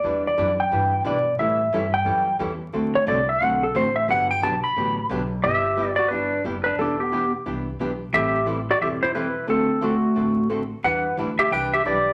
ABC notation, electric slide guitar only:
X:1
M:4/4
L:1/8
Q:"Swing" 1/4=178
K:G
V:1 name="Electric slide guitar"
d d2 g3 d2 | e3 g3 z2 | z ^c d e f A =c e | f g a b3 z2 |
[Ge]3 [Fd] [DB]2 z [DB] | [DA] [B,G]2 z4 z | [Ge]2 z [Fd] [Ge] [Ec] [EB]2 | [CA]2 [A,F]4 z2 |
[Bf]2 z [Ge] [Bg] [Ge] [Gd]2 |]